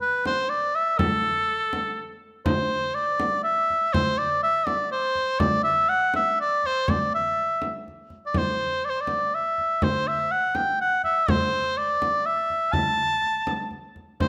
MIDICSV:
0, 0, Header, 1, 3, 480
1, 0, Start_track
1, 0, Tempo, 490998
1, 960, Time_signature, 3, 2, 24, 8
1, 7677, Tempo, 487805
1, 14004, End_track
2, 0, Start_track
2, 0, Title_t, "Shawm"
2, 0, Program_c, 0, 111
2, 14, Note_on_c, 0, 71, 84
2, 230, Note_off_c, 0, 71, 0
2, 256, Note_on_c, 0, 72, 81
2, 482, Note_on_c, 0, 74, 87
2, 497, Note_off_c, 0, 72, 0
2, 735, Note_on_c, 0, 76, 91
2, 750, Note_off_c, 0, 74, 0
2, 961, Note_on_c, 0, 69, 84
2, 976, Note_off_c, 0, 76, 0
2, 2163, Note_off_c, 0, 69, 0
2, 2399, Note_on_c, 0, 72, 81
2, 2880, Note_on_c, 0, 74, 86
2, 2895, Note_off_c, 0, 72, 0
2, 3354, Note_off_c, 0, 74, 0
2, 3360, Note_on_c, 0, 76, 89
2, 3845, Note_on_c, 0, 72, 82
2, 3860, Note_off_c, 0, 76, 0
2, 4086, Note_on_c, 0, 74, 79
2, 4100, Note_off_c, 0, 72, 0
2, 4325, Note_off_c, 0, 74, 0
2, 4332, Note_on_c, 0, 76, 95
2, 4562, Note_on_c, 0, 74, 82
2, 4576, Note_off_c, 0, 76, 0
2, 4801, Note_off_c, 0, 74, 0
2, 4807, Note_on_c, 0, 72, 78
2, 5270, Note_on_c, 0, 74, 91
2, 5284, Note_off_c, 0, 72, 0
2, 5504, Note_off_c, 0, 74, 0
2, 5510, Note_on_c, 0, 76, 89
2, 5758, Note_on_c, 0, 78, 101
2, 5773, Note_off_c, 0, 76, 0
2, 6000, Note_off_c, 0, 78, 0
2, 6018, Note_on_c, 0, 76, 88
2, 6234, Note_off_c, 0, 76, 0
2, 6263, Note_on_c, 0, 74, 84
2, 6511, Note_on_c, 0, 72, 81
2, 6526, Note_off_c, 0, 74, 0
2, 6749, Note_on_c, 0, 74, 84
2, 6763, Note_off_c, 0, 72, 0
2, 6974, Note_off_c, 0, 74, 0
2, 6988, Note_on_c, 0, 76, 83
2, 7653, Note_off_c, 0, 76, 0
2, 8080, Note_on_c, 0, 74, 63
2, 8190, Note_on_c, 0, 72, 72
2, 8205, Note_off_c, 0, 74, 0
2, 8656, Note_on_c, 0, 74, 73
2, 8671, Note_off_c, 0, 72, 0
2, 8705, Note_on_c, 0, 72, 67
2, 8720, Note_off_c, 0, 74, 0
2, 8812, Note_on_c, 0, 74, 80
2, 8827, Note_off_c, 0, 72, 0
2, 9146, Note_on_c, 0, 76, 72
2, 9161, Note_off_c, 0, 74, 0
2, 9627, Note_on_c, 0, 72, 77
2, 9642, Note_off_c, 0, 76, 0
2, 9863, Note_on_c, 0, 76, 80
2, 9878, Note_off_c, 0, 72, 0
2, 10098, Note_on_c, 0, 78, 84
2, 10113, Note_off_c, 0, 76, 0
2, 10334, Note_on_c, 0, 79, 88
2, 10349, Note_off_c, 0, 78, 0
2, 10569, Note_off_c, 0, 79, 0
2, 10588, Note_on_c, 0, 78, 87
2, 10800, Note_off_c, 0, 78, 0
2, 10815, Note_on_c, 0, 76, 84
2, 11069, Note_on_c, 0, 72, 83
2, 11084, Note_off_c, 0, 76, 0
2, 11536, Note_on_c, 0, 74, 86
2, 11551, Note_off_c, 0, 72, 0
2, 12011, Note_on_c, 0, 76, 90
2, 12026, Note_off_c, 0, 74, 0
2, 12473, Note_on_c, 0, 81, 96
2, 12487, Note_off_c, 0, 76, 0
2, 13435, Note_off_c, 0, 81, 0
2, 13929, Note_on_c, 0, 72, 74
2, 14004, Note_off_c, 0, 72, 0
2, 14004, End_track
3, 0, Start_track
3, 0, Title_t, "Frame drum"
3, 249, Note_on_c, 9, 64, 67
3, 347, Note_off_c, 9, 64, 0
3, 969, Note_on_c, 9, 64, 81
3, 1067, Note_off_c, 9, 64, 0
3, 1690, Note_on_c, 9, 64, 61
3, 1788, Note_off_c, 9, 64, 0
3, 2402, Note_on_c, 9, 64, 82
3, 2500, Note_off_c, 9, 64, 0
3, 3125, Note_on_c, 9, 64, 65
3, 3222, Note_off_c, 9, 64, 0
3, 3618, Note_on_c, 9, 64, 28
3, 3716, Note_off_c, 9, 64, 0
3, 3856, Note_on_c, 9, 64, 81
3, 3953, Note_off_c, 9, 64, 0
3, 4563, Note_on_c, 9, 64, 63
3, 4661, Note_off_c, 9, 64, 0
3, 5037, Note_on_c, 9, 64, 28
3, 5135, Note_off_c, 9, 64, 0
3, 5278, Note_on_c, 9, 64, 78
3, 5376, Note_off_c, 9, 64, 0
3, 6000, Note_on_c, 9, 64, 60
3, 6097, Note_off_c, 9, 64, 0
3, 6489, Note_on_c, 9, 64, 24
3, 6587, Note_off_c, 9, 64, 0
3, 6727, Note_on_c, 9, 64, 72
3, 6825, Note_off_c, 9, 64, 0
3, 7446, Note_on_c, 9, 64, 53
3, 7544, Note_off_c, 9, 64, 0
3, 7703, Note_on_c, 9, 64, 21
3, 7801, Note_off_c, 9, 64, 0
3, 7921, Note_on_c, 9, 64, 24
3, 8019, Note_off_c, 9, 64, 0
3, 8160, Note_on_c, 9, 64, 70
3, 8258, Note_off_c, 9, 64, 0
3, 8878, Note_on_c, 9, 64, 54
3, 8977, Note_off_c, 9, 64, 0
3, 9377, Note_on_c, 9, 64, 25
3, 9476, Note_off_c, 9, 64, 0
3, 9613, Note_on_c, 9, 64, 73
3, 9711, Note_off_c, 9, 64, 0
3, 10329, Note_on_c, 9, 64, 58
3, 10428, Note_off_c, 9, 64, 0
3, 10809, Note_on_c, 9, 64, 25
3, 10908, Note_off_c, 9, 64, 0
3, 11054, Note_on_c, 9, 64, 83
3, 11152, Note_off_c, 9, 64, 0
3, 11776, Note_on_c, 9, 64, 62
3, 11875, Note_off_c, 9, 64, 0
3, 12250, Note_on_c, 9, 64, 24
3, 12349, Note_off_c, 9, 64, 0
3, 12480, Note_on_c, 9, 64, 66
3, 12578, Note_off_c, 9, 64, 0
3, 12729, Note_on_c, 9, 64, 27
3, 12827, Note_off_c, 9, 64, 0
3, 12967, Note_on_c, 9, 64, 24
3, 13065, Note_off_c, 9, 64, 0
3, 13204, Note_on_c, 9, 64, 61
3, 13302, Note_off_c, 9, 64, 0
3, 13438, Note_on_c, 9, 64, 25
3, 13537, Note_off_c, 9, 64, 0
3, 13685, Note_on_c, 9, 64, 25
3, 13784, Note_off_c, 9, 64, 0
3, 13926, Note_on_c, 9, 64, 73
3, 14004, Note_off_c, 9, 64, 0
3, 14004, End_track
0, 0, End_of_file